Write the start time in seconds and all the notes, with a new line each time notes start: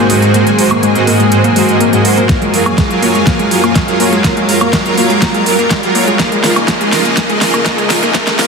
Already playing: G#2 F#3 A#3 C4 G#4, riser
0.10 G#2 G#3 F#4 C5, open hi-hat
0.22 closed hi-hat
0.34 G#2 G#3 A#3 F#4 C5, closed hi-hat
0.47 G#3, closed hi-hat
0.59 G#2 G#3 F#4 C5, open hi-hat
0.71 A#3, closed hi-hat, high woodblock
0.83 G#3, closed hi-hat
0.95 G#2 G#3 F#4 C5, closed hi-hat
1.07 G#2 G#3 A#3 F#4 D#5, open hi-hat
1.20 G#3, closed hi-hat
1.32 G#2 G#3 F#4 C5, closed hi-hat
1.44 A#3, closed hi-hat
1.56 G#2 G#3 F#4 C5, open hi-hat
1.69 G#2 G#3 F#4 D#5, closed hi-hat
1.81 A#3, closed hi-hat
1.93 G#2 G#3 F#4 D#5, closed hi-hat
2.05 G#3 F#4 C5, open hi-hat
2.17 A#3, closed hi-hat
2.29 F#2 F#3 A#3 F4 G#4 A#4, kick, snare, closed hi-hat
2.42 G#3, closed hi-hat
2.54 F#3 F4 A#4, open hi-hat
2.66 A#3, closed hi-hat, high woodblock
2.78 G#3, kick, snare, closed hi-hat
2.90 F#3 F4 A#4, closed hi-hat
3.02 F#3 A#3 F4 C#5, open hi-hat
3.15 G#3, closed hi-hat
3.27 F#3 A#3 F4 A#4, kick, snare, closed hi-hat
3.39 G#3, closed hi-hat
3.51 F#3 F4 A#4, open hi-hat
3.64 A#3, closed hi-hat, high woodblock
3.76 G#3, kick, snare, closed hi-hat
3.88 F#3 F4 A#4, closed hi-hat
4.00 F#3 A#3 F4 C#5, open hi-hat
4.12 G#3, closed hi-hat
4.24 F#3 A#3 F4 A#4, kick, snare, closed hi-hat
4.37 G#3, closed hi-hat
4.49 F#3 F4 A#4, open hi-hat
4.61 A#3, closed hi-hat, high woodblock
4.73 G#3, kick, snare, closed hi-hat
4.86 F#3 F4 A#4, closed hi-hat
4.98 F#3 A#3 F4 C#5, open hi-hat
5.10 G#3, closed hi-hat
5.22 F#3 A#3 F4 A#4, kick, snare, closed hi-hat
5.34 G#3, closed hi-hat
5.46 F#3 F4 A#4, open hi-hat
5.59 A#3, closed hi-hat
5.71 G#3, kick, snare, closed hi-hat
5.83 F#3 F4 A#4, closed hi-hat
5.95 F#3 A#3 F4 C#5, open hi-hat
6.08 G#3, closed hi-hat
6.19 C#2 C#3 F3 A#3 D#4 F4 G#4 A#4, kick, snare, closed hi-hat
6.32 G#3, closed hi-hat
6.44 F3 F4 A#4, snare, open hi-hat
6.56 A#3, closed hi-hat, high woodblock
6.68 F3 A#3 F4 A#4, kick, snare, closed hi-hat
6.81 G#3, closed hi-hat
6.93 F3 F4 A#4, snare, open hi-hat
7.05 A#3, closed hi-hat
7.17 F3 A#3 F4 A#4, kick, snare, closed hi-hat
7.29 G#3, closed hi-hat
7.41 F3 F4 A#4, snare, open hi-hat
7.54 A#3, closed hi-hat, high woodblock
7.66 F3 A#3 F4 A#4, kick, snare, closed hi-hat
7.78 G#3, closed hi-hat
7.90 F3 F4 A#4, snare, open hi-hat
8.03 A#3, closed hi-hat
8.15 F3 A#3 F4 A#4, kick, snare, closed hi-hat
8.27 G#3, snare, closed hi-hat
8.39 F3 A#3 F4 A#4, snare, open hi-hat